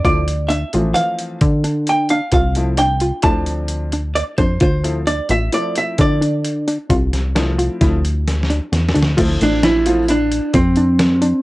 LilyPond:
<<
  \new Staff \with { instrumentName = "Hollow-body jazz guitar" } { \time 5/4 \key d \minor \tempo 4 = 131 d''4 e''4 f''4 r4 g''8 f''8 | f''4 g''4 a''4 r4 d''8 c''8 | c''4 d''8 e''8 d''8 e''8 d''2~ | d''1 r4 |
r8 d'8 e'4 d'4 c'2 | }
  \new Staff \with { instrumentName = "Synth arpeggio sound" } { \time 5/4 \key d \minor f'4 d'8 f'8 e4 r8 d'4 d'8 | f'4 d'8 f'8 e'4 r8 d'4 d'8 | f'4 d'8 f'8 e'4 r8 d'4 d'8 | f'4 d'8 f'8 e'4 r8 d'4 d'8 |
f'4 d'8 f'8 e'4 r8 d'4 d'8 | }
  \new Staff \with { instrumentName = "Grand piano" } { \time 5/4 \key d \minor <f a c' e'>8 r4 <e f a c'>4. r2 | r8 <f a c' e'>8 r4 <f a c' d'>4. r4. | r8 <f a c' e'>8 r4 <f a c' e'>4. r4. | r4 <f a c' e'>4 <f a c' e'>8 r2 r8 |
<f a c' e'>4. <f a c' f'>8 r2. | }
  \new Staff \with { instrumentName = "Analog synth bass" } { \clef bass \time 5/4 \key d \minor d,4. a,,8 r4 d2 | c,2 d,2~ d,8 f,8 | d,4. a,,8 r4 d2 | c,2 d,2 e,8 d,8 |
d,8 a,,2~ a,,8 f,2 | }
  \new DrumStaff \with { instrumentName = "Drums" } \drummode { \time 5/4 <hh bd>8 hh8 hh8 hh8 hh8 hh8 <hh bd>8 hh8 hh8 hh8 | <hh bd>8 hh8 hh8 hh8 <hh bd>8 hh8 hh8 hh8 hh8 <hh bd>8 | <hh bd>8 hh8 hh8 hh8 hh8 hh8 <hh bd>8 hh8 hh8 hh8 | <hh bd>8 <hh sn>8 <hh sn>8 hh8 <hh bd sn>8 hh8 \tuplet 3/2 { <hh sn>16 r16 sn16 hh16 r16 r16 <hh sn>16 r16 sn16 hh16 sn16 r16 } |
<cymc hh bd>8 hh8 <hh sn>8 hh8 hh8 hh8 <hh bd>8 hh8 <hh sn>8 hh8 | }
>>